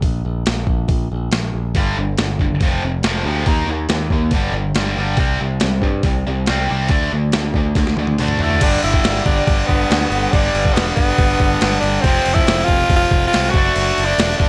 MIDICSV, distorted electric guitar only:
0, 0, Header, 1, 2, 480
1, 0, Start_track
1, 0, Tempo, 428878
1, 37, Time_signature, 4, 2, 24, 8
1, 16216, End_track
2, 0, Start_track
2, 0, Title_t, "Distorted electric guitar"
2, 0, Program_c, 0, 30
2, 1970, Note_on_c, 0, 43, 87
2, 1979, Note_on_c, 0, 50, 85
2, 1983, Note_on_c, 0, 55, 84
2, 2192, Note_off_c, 0, 43, 0
2, 2196, Note_off_c, 0, 50, 0
2, 2198, Note_off_c, 0, 55, 0
2, 2217, Note_on_c, 0, 43, 55
2, 2218, Note_on_c, 0, 50, 67
2, 2426, Note_off_c, 0, 43, 0
2, 2426, Note_off_c, 0, 50, 0
2, 2454, Note_on_c, 0, 43, 65
2, 2462, Note_on_c, 0, 50, 74
2, 2664, Note_off_c, 0, 43, 0
2, 2668, Note_off_c, 0, 50, 0
2, 2693, Note_on_c, 0, 43, 69
2, 2704, Note_on_c, 0, 50, 72
2, 2904, Note_off_c, 0, 43, 0
2, 2910, Note_off_c, 0, 50, 0
2, 2939, Note_on_c, 0, 41, 93
2, 2946, Note_on_c, 0, 48, 102
2, 2948, Note_on_c, 0, 53, 99
2, 3157, Note_off_c, 0, 41, 0
2, 3161, Note_off_c, 0, 48, 0
2, 3161, Note_off_c, 0, 53, 0
2, 3180, Note_on_c, 0, 41, 64
2, 3189, Note_on_c, 0, 48, 79
2, 3388, Note_off_c, 0, 41, 0
2, 3392, Note_off_c, 0, 48, 0
2, 3407, Note_on_c, 0, 41, 85
2, 3415, Note_on_c, 0, 48, 84
2, 3421, Note_on_c, 0, 53, 83
2, 3631, Note_off_c, 0, 41, 0
2, 3635, Note_off_c, 0, 48, 0
2, 3638, Note_off_c, 0, 53, 0
2, 3646, Note_on_c, 0, 41, 84
2, 3649, Note_on_c, 0, 48, 89
2, 3658, Note_on_c, 0, 53, 94
2, 3871, Note_off_c, 0, 41, 0
2, 3872, Note_off_c, 0, 48, 0
2, 3877, Note_off_c, 0, 53, 0
2, 3894, Note_on_c, 0, 51, 84
2, 3899, Note_on_c, 0, 58, 79
2, 3904, Note_on_c, 0, 63, 83
2, 4115, Note_off_c, 0, 51, 0
2, 4118, Note_off_c, 0, 58, 0
2, 4120, Note_off_c, 0, 63, 0
2, 4143, Note_on_c, 0, 51, 61
2, 4145, Note_on_c, 0, 58, 63
2, 4350, Note_off_c, 0, 51, 0
2, 4351, Note_off_c, 0, 58, 0
2, 4370, Note_on_c, 0, 51, 71
2, 4381, Note_on_c, 0, 58, 66
2, 4584, Note_off_c, 0, 51, 0
2, 4589, Note_off_c, 0, 58, 0
2, 4613, Note_on_c, 0, 51, 70
2, 4616, Note_on_c, 0, 58, 71
2, 4826, Note_off_c, 0, 51, 0
2, 4827, Note_off_c, 0, 58, 0
2, 4847, Note_on_c, 0, 43, 92
2, 4852, Note_on_c, 0, 50, 103
2, 4853, Note_on_c, 0, 55, 95
2, 5068, Note_off_c, 0, 43, 0
2, 5070, Note_off_c, 0, 50, 0
2, 5075, Note_off_c, 0, 55, 0
2, 5082, Note_on_c, 0, 43, 63
2, 5083, Note_on_c, 0, 50, 72
2, 5300, Note_off_c, 0, 43, 0
2, 5301, Note_off_c, 0, 50, 0
2, 5333, Note_on_c, 0, 43, 81
2, 5337, Note_on_c, 0, 50, 77
2, 5339, Note_on_c, 0, 55, 86
2, 5555, Note_off_c, 0, 43, 0
2, 5557, Note_off_c, 0, 50, 0
2, 5558, Note_off_c, 0, 55, 0
2, 5567, Note_on_c, 0, 43, 78
2, 5571, Note_on_c, 0, 55, 96
2, 5573, Note_on_c, 0, 50, 81
2, 5792, Note_off_c, 0, 43, 0
2, 5794, Note_off_c, 0, 55, 0
2, 5795, Note_off_c, 0, 50, 0
2, 5802, Note_on_c, 0, 48, 87
2, 5809, Note_on_c, 0, 60, 84
2, 5811, Note_on_c, 0, 55, 77
2, 6030, Note_off_c, 0, 48, 0
2, 6034, Note_off_c, 0, 60, 0
2, 6035, Note_off_c, 0, 55, 0
2, 6049, Note_on_c, 0, 48, 60
2, 6056, Note_on_c, 0, 55, 67
2, 6264, Note_off_c, 0, 48, 0
2, 6268, Note_off_c, 0, 55, 0
2, 6279, Note_on_c, 0, 48, 72
2, 6284, Note_on_c, 0, 55, 80
2, 6500, Note_off_c, 0, 48, 0
2, 6502, Note_off_c, 0, 55, 0
2, 6527, Note_on_c, 0, 48, 65
2, 6529, Note_on_c, 0, 55, 66
2, 6744, Note_off_c, 0, 48, 0
2, 6745, Note_off_c, 0, 55, 0
2, 6769, Note_on_c, 0, 48, 80
2, 6775, Note_on_c, 0, 55, 92
2, 6985, Note_off_c, 0, 48, 0
2, 6988, Note_off_c, 0, 55, 0
2, 7015, Note_on_c, 0, 48, 64
2, 7016, Note_on_c, 0, 55, 72
2, 7228, Note_off_c, 0, 48, 0
2, 7228, Note_off_c, 0, 55, 0
2, 7262, Note_on_c, 0, 48, 73
2, 7263, Note_on_c, 0, 55, 86
2, 7273, Note_on_c, 0, 60, 91
2, 7481, Note_off_c, 0, 48, 0
2, 7481, Note_off_c, 0, 55, 0
2, 7487, Note_off_c, 0, 60, 0
2, 7494, Note_on_c, 0, 48, 86
2, 7504, Note_on_c, 0, 55, 84
2, 7509, Note_on_c, 0, 60, 91
2, 7716, Note_off_c, 0, 48, 0
2, 7721, Note_on_c, 0, 50, 82
2, 7722, Note_off_c, 0, 55, 0
2, 7723, Note_off_c, 0, 60, 0
2, 7728, Note_on_c, 0, 62, 92
2, 7729, Note_on_c, 0, 57, 80
2, 7950, Note_off_c, 0, 50, 0
2, 7954, Note_off_c, 0, 62, 0
2, 7955, Note_off_c, 0, 57, 0
2, 7973, Note_on_c, 0, 50, 60
2, 7980, Note_on_c, 0, 57, 59
2, 8187, Note_off_c, 0, 50, 0
2, 8190, Note_off_c, 0, 57, 0
2, 8213, Note_on_c, 0, 50, 73
2, 8218, Note_on_c, 0, 57, 75
2, 8427, Note_off_c, 0, 50, 0
2, 8430, Note_off_c, 0, 57, 0
2, 8455, Note_on_c, 0, 50, 63
2, 8460, Note_on_c, 0, 57, 63
2, 8668, Note_off_c, 0, 50, 0
2, 8671, Note_off_c, 0, 57, 0
2, 8691, Note_on_c, 0, 50, 76
2, 8697, Note_on_c, 0, 57, 87
2, 8906, Note_off_c, 0, 50, 0
2, 8909, Note_off_c, 0, 57, 0
2, 8942, Note_on_c, 0, 50, 66
2, 8947, Note_on_c, 0, 57, 67
2, 9151, Note_off_c, 0, 50, 0
2, 9154, Note_off_c, 0, 57, 0
2, 9181, Note_on_c, 0, 50, 76
2, 9187, Note_on_c, 0, 57, 83
2, 9192, Note_on_c, 0, 62, 84
2, 9400, Note_off_c, 0, 50, 0
2, 9403, Note_off_c, 0, 57, 0
2, 9406, Note_off_c, 0, 62, 0
2, 9415, Note_on_c, 0, 50, 82
2, 9415, Note_on_c, 0, 57, 88
2, 9422, Note_on_c, 0, 62, 98
2, 9637, Note_off_c, 0, 50, 0
2, 9637, Note_off_c, 0, 57, 0
2, 9641, Note_off_c, 0, 62, 0
2, 9644, Note_on_c, 0, 43, 88
2, 9660, Note_on_c, 0, 50, 101
2, 9673, Note_on_c, 0, 55, 110
2, 11548, Note_off_c, 0, 43, 0
2, 11556, Note_off_c, 0, 50, 0
2, 11563, Note_off_c, 0, 55, 0
2, 11567, Note_on_c, 0, 43, 81
2, 11580, Note_on_c, 0, 50, 92
2, 11592, Note_on_c, 0, 55, 102
2, 13467, Note_off_c, 0, 43, 0
2, 13473, Note_off_c, 0, 50, 0
2, 13480, Note_off_c, 0, 55, 0
2, 13484, Note_on_c, 0, 41, 88
2, 13503, Note_on_c, 0, 48, 91
2, 13515, Note_on_c, 0, 53, 110
2, 15144, Note_off_c, 0, 41, 0
2, 15154, Note_off_c, 0, 48, 0
2, 15158, Note_on_c, 0, 50, 80
2, 15160, Note_off_c, 0, 53, 0
2, 15177, Note_on_c, 0, 57, 111
2, 15186, Note_on_c, 0, 62, 103
2, 16216, Note_off_c, 0, 50, 0
2, 16216, Note_off_c, 0, 57, 0
2, 16216, Note_off_c, 0, 62, 0
2, 16216, End_track
0, 0, End_of_file